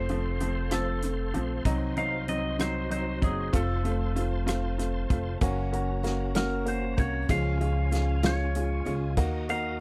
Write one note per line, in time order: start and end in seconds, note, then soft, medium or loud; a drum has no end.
0.00 1.30 F1 medium
0.00 1.64 A4 soft
0.00 0.69 C5 medium
0.00 5.38 C5 soft
0.00 1.64 F5 soft
0.00 5.38 C6 medium
0.09 0.35 F3 medium
0.09 0.36 A3 medium
0.09 0.36 C4 medium
0.09 closed hi-hat soft
0.40 0.67 F3 soft
0.40 0.67 A3 medium
0.40 0.67 C4 medium
0.40 closed hi-hat soft
0.71 0.98 F3 medium
0.71 0.98 A3 medium
0.71 0.98 C4 medium
0.71 1.39 A4 medium
0.71 cross-stick medium
0.71 closed hi-hat medium
1.02 1.29 A3 medium
1.02 1.30 C4 medium
1.02 cross-stick soft
1.02 closed hi-hat medium
1.34 1.64 A#1 medium
1.34 1.60 F3 medium
1.34 1.61 A3 medium
1.34 1.61 C4 medium
1.34 closed hi-hat soft
1.64 3.18 C2 medium
1.64 1.92 F#3 medium
1.64 1.92 C4 medium
1.64 1.92 D#4 medium
1.64 3.51 F#4 medium
1.64 3.51 D#5 soft
1.64 kick medium
1.64 closed hi-hat medium
1.97 2.23 F#3 medium
1.97 2.23 C4 medium
1.97 2.23 D#4 medium
1.97 2.27 F5 medium
1.97 closed hi-hat soft
2.28 2.54 F#3 medium
2.28 2.55 C4 medium
2.28 2.55 D#4 medium
2.28 2.61 D#5 medium
2.28 closed hi-hat soft
2.59 2.85 F#3 medium
2.59 2.85 C4 medium
2.59 2.86 D#4 medium
2.59 2.91 C5 medium
2.59 cross-stick loud
2.59 closed hi-hat medium
2.90 3.17 F#3 medium
2.90 3.17 C4 soft
2.90 3.17 D#4 medium
2.90 3.24 C5 medium
2.90 closed hi-hat medium
3.22 3.52 F#1 medium
3.22 3.48 F#3 medium
3.22 3.48 C4 soft
3.22 3.48 D#4 medium
3.22 3.52 G#4 medium
3.22 kick medium
3.22 closed hi-hat soft
3.53 5.06 F1 medium
3.53 3.79 A3 medium
3.53 3.79 C4 medium
3.53 3.79 F4 loud
3.53 5.40 F4 soft
3.53 4.21 A4 medium
3.53 5.40 A5 soft
3.53 kick medium
3.53 closed hi-hat medium
3.84 4.11 A3 medium
3.84 4.11 C4 medium
3.84 4.11 F4 medium
3.84 closed hi-hat soft
4.16 4.42 A3 medium
4.16 4.42 C4 soft
4.16 4.42 F4 medium
4.16 closed hi-hat soft
4.46 4.73 A3 medium
4.46 4.73 C4 medium
4.46 4.73 F4 medium
4.46 cross-stick loud
4.46 closed hi-hat medium
4.78 5.05 A3 medium
4.78 5.05 C4 soft
4.78 5.05 F4 medium
4.78 cross-stick soft
4.78 closed hi-hat medium
5.10 5.40 F1 medium
5.10 5.36 A3 medium
5.10 5.36 C4 soft
5.10 5.36 F4 medium
5.10 kick medium
5.10 closed hi-hat soft
5.41 6.94 F#1 medium
5.41 6.02 F#3 medium
5.41 5.67 A#3 medium
5.41 6.03 A#3 medium
5.41 5.68 C#4 medium
5.41 9.14 C#4 soft
5.41 6.04 C#4 medium
5.41 7.28 F#4 soft
5.41 5.68 F#4 medium
5.41 6.04 F#4 medium
5.41 7.28 A#5 soft
5.41 kick medium
5.41 closed hi-hat medium
5.72 5.99 A#3 medium
5.72 5.99 C#4 medium
5.72 5.99 F#4 medium
5.72 closed hi-hat soft
6.03 6.35 F#3 medium
6.03 6.30 A#3 medium
6.03 6.35 A#3 medium
6.03 6.30 C#4 medium
6.03 6.34 C#4 soft
6.03 6.30 F#4 medium
6.03 6.34 F#4 medium
6.03 snare soft
6.03 closed hi-hat soft
6.35 6.99 F#3 soft
6.35 6.61 A#3 medium
6.35 6.98 A#3 soft
6.35 6.98 C#4 medium
6.35 6.62 C#4 medium
6.35 6.96 F#4 medium
6.35 6.62 F#4 medium
6.35 6.68 A#4 medium
6.35 snare medium
6.35 closed hi-hat medium
6.65 6.92 A#3 medium
6.65 6.92 C#4 medium
6.65 6.93 F#4 medium
6.65 6.99 C5 medium
6.65 closed hi-hat medium
6.97 7.28 C2 medium
6.97 7.24 A#3 medium
6.97 7.29 A#3 soft
6.97 7.24 C#4 soft
6.97 7.29 C#4 soft
6.97 7.29 F#4 soft
6.97 7.24 F#4 medium
6.97 7.31 C#5 medium
6.97 kick medium
6.97 closed hi-hat soft
7.29 8.82 C#2 medium
7.29 7.92 C#3 medium
7.29 7.90 F3 medium
7.29 7.55 G#3 medium
7.29 7.91 G#3 medium
7.29 7.56 C#4 medium
7.29 7.92 C#4 medium
7.29 7.56 F4 loud
7.29 9.16 F4 medium
7.29 7.92 F4 medium
7.29 8.27 F5 medium
7.29 9.16 G#5 medium
7.29 kick medium
7.29 closed hi-hat medium
7.60 7.86 G#3 medium
7.60 7.87 C#4 medium
7.60 7.87 F4 medium
7.60 closed hi-hat soft
7.91 8.23 F3 soft
7.91 8.18 G#3 medium
7.91 8.23 G#3 soft
7.91 8.18 C#4 medium
7.91 8.22 C#4 medium
7.91 8.18 F4 medium
7.91 8.22 F4 medium
7.91 snare soft
7.91 closed hi-hat soft
8.23 8.87 C#3 soft
8.23 8.86 F3 medium
8.23 8.49 G#3 medium
8.23 8.86 G#3 medium
8.23 8.85 C#4 medium
8.23 8.49 C#4 medium
8.23 8.84 F4 medium
8.23 8.49 F4 medium
8.23 8.91 C#5 medium
8.23 snare loud
8.23 closed hi-hat medium
8.55 8.81 G#3 medium
8.55 8.81 C#4 medium
8.55 8.81 F4 medium
8.55 closed hi-hat medium
8.85 9.15 C#2 medium
8.85 9.12 G#3 medium
8.85 9.17 G#3 soft
8.85 9.12 C#4 medium
8.85 9.18 C#4 soft
8.85 9.17 F4 soft
8.85 9.12 F4 medium
8.85 closed hi-hat soft
9.17 9.80 D#2 medium
9.17 9.78 D#3 medium
9.17 9.43 A#3 medium
9.17 9.80 A#3 medium
9.17 9.43 D#4 medium
9.17 9.80 D#4 medium
9.17 9.80 F#4 medium
9.17 9.44 F#4 medium
9.17 9.80 F#4 medium
9.17 9.80 D#5 medium
9.17 9.80 A#5 soft
9.17 9.80 D#6 medium
9.17 kick medium
9.17 closed hi-hat medium
9.49 9.75 A#3 medium
9.49 9.75 D#4 medium
9.49 9.75 F#4 medium
9.49 9.80 F5 medium
9.49 closed hi-hat soft